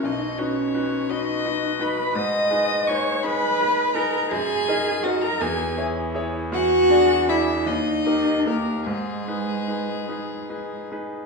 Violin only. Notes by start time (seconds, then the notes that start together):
0.05 D#5
0.38 C#5
1.10 D#5
1.82 B5
2.17 D#6
2.87 C#6
3.23 B5
3.94 A#5
4.31 G#5
5.04 F#5
5.22 A#5
5.41 G#5
6.54 F#5
7.30 E5
7.67 D#5
8.47 A#4
8.87 G#4